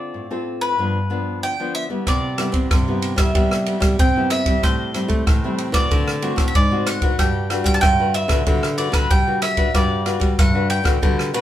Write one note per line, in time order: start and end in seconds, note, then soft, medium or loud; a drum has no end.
0.00 0.11 D3 medium
0.00 0.25 C4 medium
0.00 0.25 F4 medium
0.00 0.26 A4 medium
0.00 0.59 D5 medium
0.14 0.75 A2 medium
0.30 0.73 C4 medium
0.30 0.74 F4 medium
0.30 0.74 A4 medium
0.61 1.38 B4 medium
0.78 1.39 G2 medium
0.78 0.97 F3 medium
0.78 0.97 B3 medium
0.78 0.98 D4 medium
1.10 1.53 F3 medium
1.10 1.53 B3 medium
1.10 1.54 D4 medium
1.43 2.04 D3 medium
1.43 1.73 G5 loud
1.60 1.86 F3 medium
1.60 1.86 B3 medium
1.60 1.86 D4 medium
1.75 1.83 E5 loud
1.90 2.33 G3 medium
1.90 2.33 B3 medium
1.90 2.34 E4 medium
2.07 2.48 C3 medium
2.07 2.68 C3 medium
2.07 3.18 D5 medium
2.07 kick medium
2.07 cross-stick medium
2.07 ride soft
2.38 2.82 G3 medium
2.38 2.82 B3 medium
2.38 2.82 E4 medium
2.38 cross-stick medium
2.38 ride soft
2.52 2.67 C4 medium
2.52 kick medium
2.52 ride soft
2.71 3.32 G2 medium
2.71 3.12 C3 medium
2.71 kick medium
2.71 cross-stick medium
2.71 ride medium
2.88 3.14 G3 medium
2.88 3.14 B3 medium
2.88 3.15 E4 medium
3.02 ride medium
3.16 3.31 G3 medium
3.16 3.29 G3 medium
3.16 3.30 B3 medium
3.16 3.30 E4 medium
3.16 4.01 E5 medium
3.16 kick medium
3.16 cross-stick medium
3.16 ride medium
3.35 3.96 C3 medium
3.35 3.76 G3 loud
3.35 3.62 G3 medium
3.35 3.62 B3 medium
3.35 3.62 E4 medium
3.35 kick medium
3.35 ride medium
3.51 cross-stick medium
3.66 4.10 G3 medium
3.66 4.10 B3 medium
3.66 4.10 E4 medium
3.66 ride soft
3.80 3.95 G3 medium
3.80 kick medium
3.80 cross-stick medium
3.80 ride medium
3.99 4.60 G2 soft
3.99 4.53 C4 medium
3.99 4.30 G5 medium
3.99 kick medium
3.99 ride medium
4.16 4.42 G3 medium
4.16 4.43 B3 medium
4.16 4.43 E4 medium
4.30 4.61 E5 medium
4.30 cross-stick medium
4.30 ride soft
4.46 4.89 G3 medium
4.46 4.90 C4 medium
4.46 4.90 E4 medium
4.46 kick medium
4.46 ride medium
4.63 5.04 A2 medium
4.63 5.24 A2 medium
4.63 5.71 C5 medium
4.63 kick medium
4.63 cross-stick medium
4.63 ride soft
4.94 5.25 G3 medium
4.94 5.25 C4 medium
4.94 5.25 E4 medium
4.94 cross-stick medium
4.94 ride soft
5.08 5.23 A3 loud
5.08 kick medium
5.08 ride soft
5.27 5.68 A2 medium
5.27 5.88 E3 medium
5.27 kick medium
5.27 cross-stick medium
5.27 ride soft
5.44 5.70 G3 medium
5.44 5.71 C4 medium
5.44 5.71 E4 medium
5.58 ride soft
5.72 5.87 E3 medium
5.72 6.17 A3 medium
5.72 6.17 C4 medium
5.72 6.18 F#4 medium
5.72 6.43 D5 medium
5.72 kick medium
5.72 cross-stick medium
5.72 ride soft
5.91 6.32 D3 loud
5.91 6.52 D3 medium
5.91 kick medium
5.91 ride medium
6.08 cross-stick medium
6.22 6.53 A3 medium
6.22 6.53 C4 medium
6.22 6.53 F#4 medium
6.22 ride soft
6.36 6.51 A2 medium
6.36 kick medium
6.36 cross-stick medium
6.36 ride soft
6.48 6.55 E5 medium
6.55 7.09 G#2 medium
6.55 6.88 D5 medium
6.55 kick medium
6.55 ride soft
6.71 6.98 A3 medium
6.71 6.98 C4 medium
6.71 6.98 F#4 medium
6.87 7.19 F#5 loud
6.87 cross-stick medium
6.87 ride soft
7.02 7.45 D4 medium
7.02 7.45 F#4 medium
7.02 7.46 B4 medium
7.02 kick medium
7.02 ride soft
7.19 7.60 G2 medium
7.19 7.80 G3 medium
7.19 7.65 G5 medium
7.19 kick medium
7.19 cross-stick medium
7.19 ride soft
7.50 7.94 D4 medium
7.50 7.94 F#4 medium
7.50 7.94 B4 medium
7.50 cross-stick medium
7.50 ride soft
7.64 7.79 G3 loud
7.64 7.73 G5 loud
7.64 kick medium
7.64 ride soft
7.74 7.81 A5 medium
7.81 8.24 G2 loud
7.81 8.44 D3 medium
7.81 8.13 G5 loud
7.81 kick medium
7.81 cross-stick medium
7.81 ride medium
7.99 8.26 D4 medium
7.99 8.26 F#4 medium
7.99 8.26 B4 medium
8.14 8.77 E5 medium
8.14 ride soft
8.28 8.43 D3 medium
8.28 8.41 D4 medium
8.28 8.41 F#4 medium
8.28 8.41 B4 medium
8.28 kick medium
8.28 cross-stick medium
8.28 ride medium
8.46 8.87 D3 loud
8.46 9.07 G3 medium
8.46 8.66 D4 medium
8.46 8.66 F#4 medium
8.46 8.66 B4 medium
8.46 kick medium
8.46 ride medium
8.63 cross-stick medium
8.77 9.21 D4 medium
8.77 9.21 F#4 medium
8.77 9.21 B4 medium
8.77 8.93 D5 medium
8.77 ride medium
8.92 9.07 D3 loud
8.92 9.11 B4 medium
8.92 kick medium
8.92 cross-stick medium
8.92 ride medium
9.10 9.71 D3 medium
9.10 9.65 G3 medium
9.10 9.42 G5 medium
9.10 kick medium
9.10 ride soft
9.27 9.54 D4 medium
9.27 9.54 F#4 medium
9.27 9.54 B4 medium
9.42 9.72 E5 medium
9.42 cross-stick medium
9.42 ride medium
9.57 9.69 D4 medium
9.57 9.69 F#4 medium
9.57 9.69 B4 medium
9.57 kick medium
9.57 ride medium
9.74 10.15 G2 medium
9.74 10.35 G3 medium
9.74 10.01 D4 medium
9.74 10.01 F#4 medium
9.74 10.01 B4 medium
9.74 10.35 D5 medium
9.74 kick medium
9.74 cross-stick medium
9.74 ride soft
10.06 10.49 D4 medium
10.06 10.49 F#4 medium
10.06 10.49 B4 medium
10.06 cross-stick medium
10.06 ride soft
10.20 10.34 G3 medium
10.20 kick medium
10.20 ride soft
10.38 10.79 G2 medium
10.38 10.99 D3 medium
10.38 10.69 F#5 medium
10.38 kick loud
10.38 cross-stick medium
10.38 ride soft
10.54 10.81 D4 medium
10.54 10.81 F#4 medium
10.54 10.82 B4 medium
10.70 11.41 G5 medium
10.70 ride soft
10.84 10.99 D3 medium
10.84 10.96 D4 medium
10.84 10.97 F#4 medium
10.84 10.97 B4 medium
10.84 kick medium
10.84 cross-stick medium
10.84 ride soft
11.02 11.30 D3 loud
11.02 11.41 G3 medium
11.02 11.29 D4 medium
11.02 11.29 F#4 medium
11.02 11.29 B4 medium
11.02 kick medium
11.02 ride soft
11.19 cross-stick medium
11.34 11.41 B2 medium
11.34 11.41 D4 medium
11.34 11.41 F#4 medium
11.34 11.41 B4 medium
11.34 ride medium